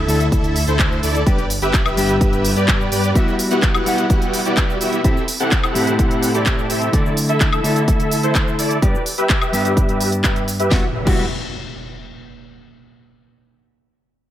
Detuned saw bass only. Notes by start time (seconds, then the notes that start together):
Already playing: D2
0.32 D2
0.67 D2
1.03 D2
1.27 G1
1.62 G1
1.85 G1
2.21 G1
2.56 G2
2.92 G2
10.71 E1
11.07 E1